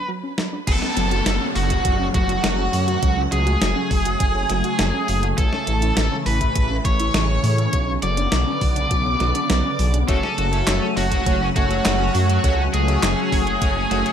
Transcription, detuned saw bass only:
0.67 F#1
0.97 F#1
1.26 F#1
1.55 F#1
1.85 F#1
2.14 F#1
2.44 F#1
2.73 F#2
3.03 C#2
3.32 C#2
3.62 F#1
3.91 F#1
4.20 F#1
4.50 F#1
4.79 F#1
5.09 F#1
5.38 A1
5.67 A1
5.97 A1
6.26 A1
6.56 A1
6.85 A1
7.14 A1
7.43 A2
7.73 B1
8.03 F#1
8.32 B1
8.61 B1
8.91 B1
9.20 B1
9.50 B1
9.79 B1
10.09 F#1
10.38 F#1
10.68 F#1
10.97 F#1
11.26 F#1
11.56 F#1
11.85 F#1
12.15 F#2
12.44 C#2
12.73 C#2
13.03 F#1
13.32 F#1
13.62 F#1
13.91 F#1

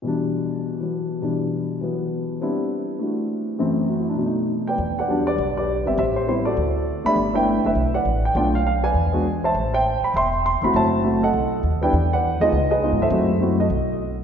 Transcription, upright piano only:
0.02 B2 E3 G3
0.07 D4
0.81 E3 F#3 B3
1.22 B2 E3 G3 D4
1.81 E3 F#3 B3
2.41 G3 B3 C4 D4 E4
2.99 A3 D4 E4 F#4
3.59 F#2 E3 A3 C4
3.89 F#4
4.00 E4
4.09 D4
4.15 B2 F#3
4.23 A3 D#4
4.67 B4 D5 G5
4.99 B4 D5 F#5
5.08 F#3 G3 B3 D4
5.27 G4 B4 D5
5.57 G4 B4 D5
5.86 G3 B3 C4 G4 E5
5.99 G4 C5 E5
6.16 C5
6.27 G3 B3 C4 E4 C5
6.45 F#4 A4 D5
7.04 A3 B3 D4 G4 D5 E5 B5
7.34 A3 B3 D4 E4 B4 E5 G5
7.66 B4 E5
7.94 B4 D5 F#5
8.25 G5
8.36 A3 B3 D4 F4 D5 G5
8.55 F5
8.67 F5
8.84 B4 D5 G#5
9.12 G#3 B3 D4 F#4
9.44 C5 E5 A5
9.74 C5 E5 G5
10.04 B5
10.16 E5 G5 C6
10.46 C6
10.63 A3 C4 E4 F#4 B5
10.75 C5 E5 A5
11.04 A3 C4 E4 F#4
11.23 A4 D#5 F#5
11.81 G3 B3 D4 E4 B4 D5 G5
12.13 B4 D5 F#5
12.40 G#3 B3 D#4 F4 G#4 B4 D#5
12.71 G#4 B4 D#5
12.82 G#3 B3 D#4 F4
13.02 A4 C5 E5
13.11 A3 C4 E4 F#4
13.41 A3 C4 E4 F#4
13.60 F#4 A4 D#5

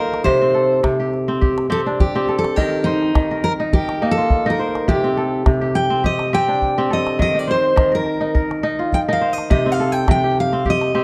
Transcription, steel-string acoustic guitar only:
Already playing: A#4
0.24 C5
1.72 A4
2.00 G4
2.39 A4
2.56 G4
2.84 D#4
3.44 A#4
3.73 G4
4.11 A4
4.50 A#4
4.89 G4
5.75 G5
6.06 D#5
6.34 G5
6.93 D#5
7.22 D#5
7.39 D5
7.51 C5
7.95 A#4
8.94 G5
9.13 F5
9.33 D#5
9.51 D#5
9.72 F5
9.92 G5
10.11 G5
10.40 F5
10.70 D#5

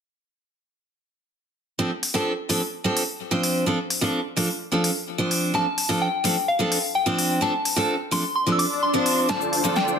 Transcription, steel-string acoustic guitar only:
1.79 F3 C4 D4 A4
2.14 F3 C4 D4 A4
2.49 F3 C4 D4 A4
2.84 F3 C4 D4 A4
3.31 F3 C4 D4 C5
3.66 F3 C4 D4 A4
4.01 F3 C4 D4 A4
4.37 F3 C4 D4 A4
4.72 F3 C4 D4 A4
5.18 F3 C4 D4 C5
5.54 F3 C4 D4 A4
5.89 F3 C4 D4 A4
6.24 F3 C4 D4 A4
6.59 F3 C4 D4 A4
7.06 F3 C4 D4 C5
7.41 F3 C4 D4 A4
7.76 F3 C4 D4 A4
8.11 F3 C4 D4 A4
8.46 F3 C4 D4 A4
8.94 F3 C4 D4 C5
9.29 F3 C4 D4 A4
9.64 F3 C4 D4 A4

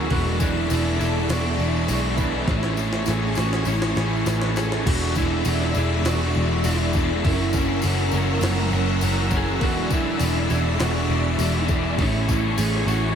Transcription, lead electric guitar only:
Already playing: G#4
0.13 F#4
0.40 E4
1.00 E4
1.31 F#4
2.51 E4
3.10 G#4
3.40 F#4
3.68 E4
4.57 G#4
4.88 F#4
5.17 E4
5.78 E4
6.07 F#4
6.65 E4
7.26 E4
7.54 C#4
8.16 A#3
9.37 G#4
9.63 F#4
9.94 E4
10.51 E4
10.81 F#4
12.02 E4
12.58 G#4
12.88 F#4

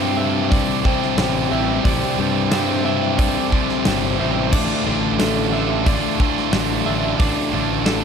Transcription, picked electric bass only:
Already playing: G2
1.19 A1
1.51 A1
1.85 A1
2.19 G2
3.86 G1
4.21 A1
4.53 A1
4.87 A1
6.53 A1
6.87 A1
7.20 A1
7.53 A1

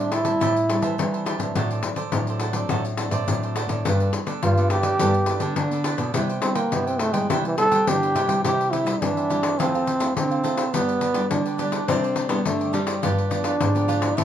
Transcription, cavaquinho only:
0.00 C5 E5 A5
0.12 G4 C5 E5 A5
0.25 C5 E5 A5
0.41 G4 C5 E5 A5
0.57 muted cavaquinho stroke
0.69 G4 C5 E5 A5
0.82 C5 E5 A5
1.14 C5 E5 A5
1.26 G4 C5 E5 A5
1.39 C5 E5 A5
1.56 F#4 A4 C5 D5
1.71 A4 C5 D5
1.84 muted cavaquinho stroke
1.96 A4 C5 D5
2.29 A4 C5 D5
2.41 F#4 A4 C5 D5
2.54 A4 C5 D5
2.70 F#4 A4 C5 D5
2.86 muted cavaquinho stroke
2.98 F#4 A4 C5 D5
3.12 A4 C5 D5
3.43 A4 C5 D5
3.56 F#4 A4 C5 D5
3.69 A4 C5 D5
3.85 G4 A4 B4 D5
4.00 A4 B4 D5
4.14 muted cavaquinho stroke
4.26 A4 B4 D5
4.57 A4 B4 D5
4.70 G4 A4 B4 D5
4.83 A4 B4 D5
5.00 G4 A4 B4 D5
5.14 muted cavaquinho stroke
5.28 G4 A4 B4 D5
5.41 A4 B4 D5
5.72 A4 B4 D5
5.84 G4 A4 B4 D5
5.97 A4 B4 D5
6.14 E4 B4 C5 G5
6.29 B4 C5 G5
6.42 muted cavaquinho stroke
6.55 B4 C5 G5
6.87 B4 C5 G5
7.00 E4 B4 C5 G5
7.13 B4 C5 G5
7.30 E4 B4 C5 G5
7.45 muted cavaquinho stroke
7.58 E4 B4 C5 G5
7.72 B4 C5 G5
8.03 B4 C5 G5
8.16 E4 B4 C5 G5
8.29 B4 C5 G5
8.45 E4 G4 C5 E5
8.73 E4 G4 C5 E5
8.86 E4 G4 C5 E5
9.17 G4 C5 E5
9.30 E4 G4 C5 E5
9.59 E4 A4 C5 F5
9.74 A4 C5 F5
9.86 E4 A4 C5 F5
10.00 E4 A4 C5 F5
10.31 A4 C5 F5
10.43 E4 A4 C5 F5
10.57 A4 C5 F5
10.73 D4 G4 B4 D5
11.01 D4 G4 B4 D5
11.14 D4 G4 B4 D5
11.45 G4 B4 D5
11.58 D4 G4 B4 D5
11.89 D4 G4 C5 D5
12.03 G4 C5 D5
12.15 D4 G4 C5 D5
12.29 D4 G4 C5 D5
12.60 G4 C5 D5
12.73 D4 G4 C5 D5
12.86 G4 C5 D5
13.02 F4 G4 B4 D5
13.30 F4 G4 B4 D5
13.44 F4 G4 B4 D5
13.75 G4 B4 D5
13.88 F4 G4 B4 D5
14.17 G4 C5 E5 A5

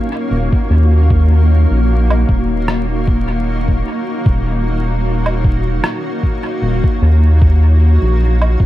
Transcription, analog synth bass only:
0.31 D#1
0.70 D#2
1.71 A#1
2.29 D#1
4.26 D#1
6.62 D#1
7.02 D#2
8.02 A#1
8.60 D#1

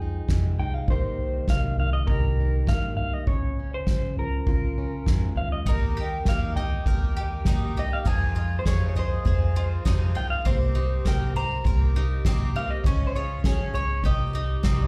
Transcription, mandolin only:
5.66 D#4
5.97 G4
6.27 A#4
6.57 D#5
6.87 A#4
7.17 G4
7.47 D#4
7.77 G4
8.06 D#4
8.36 F4
8.66 G#4
8.96 D#5
9.26 G#4
9.56 F4
9.86 D#4
10.15 F4
10.45 C4
10.75 D#4
11.06 A#4
11.36 C5
11.66 A#4
11.96 D#4
12.26 C4
12.56 D#4
12.86 C#4
13.16 F4
13.45 G#4
13.75 C#5
14.05 G4
14.35 D#4
14.64 C4

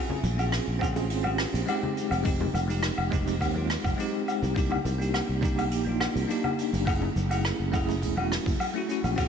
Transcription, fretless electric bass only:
0.23 A#1
0.68 A#1
1.10 G#1
1.54 A#1
2.12 F1
2.54 F1
2.98 F1
3.41 D#2
3.85 F1
4.42 C2
4.85 C2
5.29 C2
5.72 A#1
6.16 C2
6.73 F#1
7.16 F#1
7.60 F#1
8.02 E1
8.46 F#1
9.04 A#1

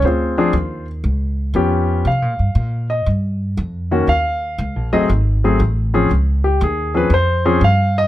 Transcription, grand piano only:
0.05 C4 F4 G#4 C5
0.38 F3 C4 D4 G#4
1.55 F3 B3 C#4 G4
2.07 F5
2.90 D#5
3.91 D#3 A#3 C#4 F#4
4.09 F5
4.93 F#3 A3 C4 G#4 D#5
5.44 F#3 A3 C4 G#4
5.94 F3 C4 C#4 G#4
6.44 G4
6.63 G#4
6.94 F3 C4 C#4 G#4 B4
7.14 C5
7.45 F3 C4 C#4 G#4
7.64 F5
7.98 D#5

